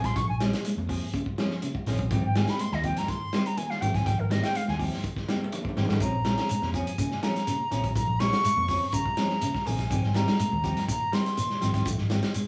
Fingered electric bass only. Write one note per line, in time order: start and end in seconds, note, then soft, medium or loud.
0.04 0.14 A#1 medium
0.16 0.26 A#1 loud
0.29 0.49 A#1 medium
0.77 0.97 F2 medium
1.87 1.97 A#1 medium
1.99 2.09 A#1 medium
2.11 2.21 G#1 medium
2.24 2.44 G#1 medium
2.72 2.93 D#2 medium
3.82 3.92 G#1 medium
3.95 4.04 G#1 medium
4.06 4.17 G#1 loud
4.20 4.39 G#1 medium
4.68 4.88 D#2 medium
5.77 5.88 G#1 medium
5.90 6.00 G#1 medium
6.01 6.11 A#1 medium
6.14 6.34 A#1 medium
6.63 6.83 F2 medium
7.72 7.82 A#1 medium
7.84 7.94 A#1 medium
7.96 8.06 A#1 medium
8.08 8.28 A#1 medium
8.57 8.77 F2 medium
9.67 9.77 A#1 medium
9.79 9.89 A#1 medium
9.91 10.01 G#1 medium
10.04 10.24 G#1 medium
10.53 10.72 D#2 medium
11.63 11.72 G#1 medium
11.74 11.84 G#1 medium
11.86 11.96 G#1 medium
11.99 12.19 G#1 medium